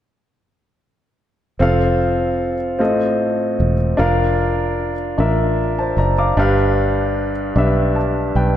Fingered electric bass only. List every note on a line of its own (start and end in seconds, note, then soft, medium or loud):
1.60 2.80 F1 medium
2.80 3.55 A1 medium
3.60 3.96 E1 medium
3.99 5.14 F1 medium
5.18 5.93 A1 medium
5.97 6.33 F#1 medium
6.37 7.52 G1 medium
7.56 8.31 B1 medium
8.35 8.57 B1 medium